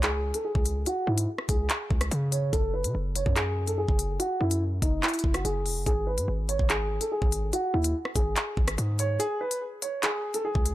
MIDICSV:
0, 0, Header, 1, 4, 480
1, 0, Start_track
1, 0, Key_signature, 4, "minor"
1, 0, Tempo, 416667
1, 995, Time_signature, 4, 2, 24, 8
1, 12378, End_track
2, 0, Start_track
2, 0, Title_t, "Grand piano"
2, 0, Program_c, 0, 0
2, 39, Note_on_c, 0, 68, 98
2, 376, Note_off_c, 0, 68, 0
2, 399, Note_on_c, 0, 69, 74
2, 507, Note_off_c, 0, 69, 0
2, 513, Note_on_c, 0, 68, 75
2, 965, Note_off_c, 0, 68, 0
2, 1000, Note_on_c, 0, 66, 102
2, 1218, Note_off_c, 0, 66, 0
2, 1234, Note_on_c, 0, 64, 79
2, 1454, Note_off_c, 0, 64, 0
2, 1711, Note_on_c, 0, 68, 72
2, 2627, Note_off_c, 0, 68, 0
2, 2671, Note_on_c, 0, 73, 73
2, 2893, Note_off_c, 0, 73, 0
2, 2909, Note_on_c, 0, 69, 98
2, 3132, Note_off_c, 0, 69, 0
2, 3151, Note_on_c, 0, 71, 74
2, 3372, Note_off_c, 0, 71, 0
2, 3640, Note_on_c, 0, 73, 74
2, 3858, Note_off_c, 0, 73, 0
2, 3872, Note_on_c, 0, 68, 87
2, 4212, Note_off_c, 0, 68, 0
2, 4236, Note_on_c, 0, 69, 76
2, 4345, Note_off_c, 0, 69, 0
2, 4352, Note_on_c, 0, 68, 85
2, 4805, Note_off_c, 0, 68, 0
2, 4832, Note_on_c, 0, 66, 100
2, 5053, Note_off_c, 0, 66, 0
2, 5074, Note_on_c, 0, 64, 91
2, 5294, Note_off_c, 0, 64, 0
2, 5553, Note_on_c, 0, 63, 76
2, 5774, Note_off_c, 0, 63, 0
2, 5793, Note_on_c, 0, 64, 88
2, 6133, Note_off_c, 0, 64, 0
2, 6154, Note_on_c, 0, 66, 76
2, 6264, Note_off_c, 0, 66, 0
2, 6275, Note_on_c, 0, 68, 83
2, 6726, Note_off_c, 0, 68, 0
2, 6754, Note_on_c, 0, 68, 98
2, 6974, Note_off_c, 0, 68, 0
2, 6991, Note_on_c, 0, 71, 74
2, 7213, Note_off_c, 0, 71, 0
2, 7475, Note_on_c, 0, 73, 80
2, 7695, Note_off_c, 0, 73, 0
2, 7718, Note_on_c, 0, 68, 90
2, 8055, Note_off_c, 0, 68, 0
2, 8074, Note_on_c, 0, 69, 77
2, 8184, Note_off_c, 0, 69, 0
2, 8198, Note_on_c, 0, 68, 80
2, 8648, Note_off_c, 0, 68, 0
2, 8675, Note_on_c, 0, 66, 98
2, 8895, Note_off_c, 0, 66, 0
2, 8910, Note_on_c, 0, 64, 84
2, 9132, Note_off_c, 0, 64, 0
2, 9393, Note_on_c, 0, 68, 82
2, 10308, Note_off_c, 0, 68, 0
2, 10362, Note_on_c, 0, 73, 80
2, 10579, Note_off_c, 0, 73, 0
2, 10592, Note_on_c, 0, 68, 100
2, 10813, Note_off_c, 0, 68, 0
2, 10838, Note_on_c, 0, 71, 77
2, 11056, Note_off_c, 0, 71, 0
2, 11315, Note_on_c, 0, 73, 69
2, 11535, Note_off_c, 0, 73, 0
2, 11558, Note_on_c, 0, 68, 94
2, 11896, Note_off_c, 0, 68, 0
2, 11916, Note_on_c, 0, 69, 79
2, 12025, Note_off_c, 0, 69, 0
2, 12034, Note_on_c, 0, 68, 89
2, 12378, Note_off_c, 0, 68, 0
2, 12378, End_track
3, 0, Start_track
3, 0, Title_t, "808-style bass"
3, 0, Program_c, 1, 38
3, 0, Note_on_c, 1, 37, 100
3, 376, Note_off_c, 1, 37, 0
3, 635, Note_on_c, 1, 37, 102
3, 981, Note_off_c, 1, 37, 0
3, 1235, Note_on_c, 1, 44, 108
3, 1466, Note_off_c, 1, 44, 0
3, 1714, Note_on_c, 1, 37, 106
3, 1945, Note_off_c, 1, 37, 0
3, 2195, Note_on_c, 1, 37, 101
3, 2426, Note_off_c, 1, 37, 0
3, 2435, Note_on_c, 1, 49, 103
3, 2896, Note_off_c, 1, 49, 0
3, 2916, Note_on_c, 1, 30, 108
3, 3275, Note_on_c, 1, 49, 101
3, 3293, Note_off_c, 1, 30, 0
3, 3390, Note_off_c, 1, 49, 0
3, 3395, Note_on_c, 1, 30, 106
3, 3741, Note_off_c, 1, 30, 0
3, 3756, Note_on_c, 1, 42, 104
3, 4447, Note_off_c, 1, 42, 0
3, 4476, Note_on_c, 1, 30, 103
3, 4821, Note_off_c, 1, 30, 0
3, 5076, Note_on_c, 1, 42, 100
3, 5537, Note_off_c, 1, 42, 0
3, 5555, Note_on_c, 1, 30, 104
3, 5786, Note_off_c, 1, 30, 0
3, 6035, Note_on_c, 1, 30, 104
3, 6266, Note_off_c, 1, 30, 0
3, 6276, Note_on_c, 1, 30, 105
3, 6516, Note_on_c, 1, 28, 101
3, 6534, Note_off_c, 1, 30, 0
3, 6636, Note_on_c, 1, 30, 97
3, 6654, Note_off_c, 1, 28, 0
3, 6750, Note_off_c, 1, 30, 0
3, 6756, Note_on_c, 1, 32, 104
3, 7116, Note_on_c, 1, 44, 101
3, 7133, Note_off_c, 1, 32, 0
3, 7230, Note_off_c, 1, 44, 0
3, 7235, Note_on_c, 1, 32, 109
3, 7581, Note_off_c, 1, 32, 0
3, 7596, Note_on_c, 1, 32, 105
3, 8057, Note_off_c, 1, 32, 0
3, 8316, Note_on_c, 1, 32, 104
3, 8661, Note_off_c, 1, 32, 0
3, 8916, Note_on_c, 1, 39, 107
3, 9146, Note_off_c, 1, 39, 0
3, 9395, Note_on_c, 1, 32, 103
3, 9626, Note_off_c, 1, 32, 0
3, 9876, Note_on_c, 1, 32, 101
3, 10106, Note_off_c, 1, 32, 0
3, 10115, Note_on_c, 1, 44, 105
3, 10576, Note_off_c, 1, 44, 0
3, 12156, Note_on_c, 1, 37, 103
3, 12378, Note_off_c, 1, 37, 0
3, 12378, End_track
4, 0, Start_track
4, 0, Title_t, "Drums"
4, 32, Note_on_c, 9, 42, 73
4, 35, Note_on_c, 9, 39, 112
4, 148, Note_off_c, 9, 42, 0
4, 150, Note_off_c, 9, 39, 0
4, 393, Note_on_c, 9, 42, 69
4, 508, Note_off_c, 9, 42, 0
4, 635, Note_on_c, 9, 36, 93
4, 750, Note_off_c, 9, 36, 0
4, 754, Note_on_c, 9, 42, 95
4, 870, Note_off_c, 9, 42, 0
4, 995, Note_on_c, 9, 42, 75
4, 1110, Note_off_c, 9, 42, 0
4, 1355, Note_on_c, 9, 42, 87
4, 1470, Note_off_c, 9, 42, 0
4, 1595, Note_on_c, 9, 37, 65
4, 1710, Note_off_c, 9, 37, 0
4, 1714, Note_on_c, 9, 36, 96
4, 1714, Note_on_c, 9, 42, 84
4, 1829, Note_off_c, 9, 36, 0
4, 1829, Note_off_c, 9, 42, 0
4, 1953, Note_on_c, 9, 42, 65
4, 1956, Note_on_c, 9, 39, 110
4, 2068, Note_off_c, 9, 42, 0
4, 2071, Note_off_c, 9, 39, 0
4, 2195, Note_on_c, 9, 36, 89
4, 2310, Note_off_c, 9, 36, 0
4, 2313, Note_on_c, 9, 42, 73
4, 2315, Note_on_c, 9, 37, 95
4, 2428, Note_off_c, 9, 42, 0
4, 2431, Note_off_c, 9, 37, 0
4, 2436, Note_on_c, 9, 42, 77
4, 2552, Note_off_c, 9, 42, 0
4, 2675, Note_on_c, 9, 42, 95
4, 2790, Note_off_c, 9, 42, 0
4, 2915, Note_on_c, 9, 42, 78
4, 2916, Note_on_c, 9, 36, 118
4, 3030, Note_off_c, 9, 42, 0
4, 3031, Note_off_c, 9, 36, 0
4, 3276, Note_on_c, 9, 42, 84
4, 3391, Note_off_c, 9, 42, 0
4, 3635, Note_on_c, 9, 42, 81
4, 3750, Note_off_c, 9, 42, 0
4, 3756, Note_on_c, 9, 36, 88
4, 3871, Note_off_c, 9, 36, 0
4, 3873, Note_on_c, 9, 42, 69
4, 3876, Note_on_c, 9, 39, 111
4, 3988, Note_off_c, 9, 42, 0
4, 3991, Note_off_c, 9, 39, 0
4, 4233, Note_on_c, 9, 42, 67
4, 4349, Note_off_c, 9, 42, 0
4, 4476, Note_on_c, 9, 36, 93
4, 4591, Note_off_c, 9, 36, 0
4, 4595, Note_on_c, 9, 42, 92
4, 4711, Note_off_c, 9, 42, 0
4, 4836, Note_on_c, 9, 42, 79
4, 4951, Note_off_c, 9, 42, 0
4, 5196, Note_on_c, 9, 42, 85
4, 5311, Note_off_c, 9, 42, 0
4, 5555, Note_on_c, 9, 36, 95
4, 5555, Note_on_c, 9, 42, 82
4, 5670, Note_off_c, 9, 36, 0
4, 5670, Note_off_c, 9, 42, 0
4, 5796, Note_on_c, 9, 39, 110
4, 5796, Note_on_c, 9, 42, 42
4, 5856, Note_off_c, 9, 42, 0
4, 5856, Note_on_c, 9, 42, 51
4, 5912, Note_off_c, 9, 39, 0
4, 5916, Note_off_c, 9, 42, 0
4, 5916, Note_on_c, 9, 42, 61
4, 5976, Note_off_c, 9, 42, 0
4, 5976, Note_on_c, 9, 42, 70
4, 6035, Note_on_c, 9, 36, 89
4, 6092, Note_off_c, 9, 42, 0
4, 6150, Note_off_c, 9, 36, 0
4, 6154, Note_on_c, 9, 42, 72
4, 6156, Note_on_c, 9, 37, 98
4, 6269, Note_off_c, 9, 42, 0
4, 6271, Note_off_c, 9, 37, 0
4, 6278, Note_on_c, 9, 42, 74
4, 6393, Note_off_c, 9, 42, 0
4, 6516, Note_on_c, 9, 46, 67
4, 6631, Note_off_c, 9, 46, 0
4, 6756, Note_on_c, 9, 36, 120
4, 6756, Note_on_c, 9, 42, 78
4, 6871, Note_off_c, 9, 36, 0
4, 6871, Note_off_c, 9, 42, 0
4, 7116, Note_on_c, 9, 42, 82
4, 7232, Note_off_c, 9, 42, 0
4, 7476, Note_on_c, 9, 42, 83
4, 7591, Note_off_c, 9, 42, 0
4, 7596, Note_on_c, 9, 36, 92
4, 7711, Note_off_c, 9, 36, 0
4, 7714, Note_on_c, 9, 42, 70
4, 7717, Note_on_c, 9, 39, 111
4, 7829, Note_off_c, 9, 42, 0
4, 7832, Note_off_c, 9, 39, 0
4, 8074, Note_on_c, 9, 42, 69
4, 8189, Note_off_c, 9, 42, 0
4, 8316, Note_on_c, 9, 36, 95
4, 8431, Note_off_c, 9, 36, 0
4, 8436, Note_on_c, 9, 42, 94
4, 8551, Note_off_c, 9, 42, 0
4, 8676, Note_on_c, 9, 42, 78
4, 8791, Note_off_c, 9, 42, 0
4, 9036, Note_on_c, 9, 42, 84
4, 9151, Note_off_c, 9, 42, 0
4, 9276, Note_on_c, 9, 37, 67
4, 9391, Note_off_c, 9, 37, 0
4, 9395, Note_on_c, 9, 36, 95
4, 9396, Note_on_c, 9, 42, 81
4, 9510, Note_off_c, 9, 36, 0
4, 9511, Note_off_c, 9, 42, 0
4, 9634, Note_on_c, 9, 42, 66
4, 9637, Note_on_c, 9, 39, 106
4, 9750, Note_off_c, 9, 42, 0
4, 9752, Note_off_c, 9, 39, 0
4, 9875, Note_on_c, 9, 36, 89
4, 9991, Note_off_c, 9, 36, 0
4, 9994, Note_on_c, 9, 42, 77
4, 9996, Note_on_c, 9, 37, 96
4, 10109, Note_off_c, 9, 42, 0
4, 10111, Note_off_c, 9, 37, 0
4, 10118, Note_on_c, 9, 42, 76
4, 10233, Note_off_c, 9, 42, 0
4, 10357, Note_on_c, 9, 42, 91
4, 10472, Note_off_c, 9, 42, 0
4, 10597, Note_on_c, 9, 42, 79
4, 10712, Note_off_c, 9, 42, 0
4, 10956, Note_on_c, 9, 42, 86
4, 11071, Note_off_c, 9, 42, 0
4, 11315, Note_on_c, 9, 42, 85
4, 11430, Note_off_c, 9, 42, 0
4, 11553, Note_on_c, 9, 42, 72
4, 11556, Note_on_c, 9, 39, 106
4, 11669, Note_off_c, 9, 42, 0
4, 11671, Note_off_c, 9, 39, 0
4, 11913, Note_on_c, 9, 42, 70
4, 12028, Note_off_c, 9, 42, 0
4, 12156, Note_on_c, 9, 36, 99
4, 12271, Note_off_c, 9, 36, 0
4, 12275, Note_on_c, 9, 42, 94
4, 12378, Note_off_c, 9, 42, 0
4, 12378, End_track
0, 0, End_of_file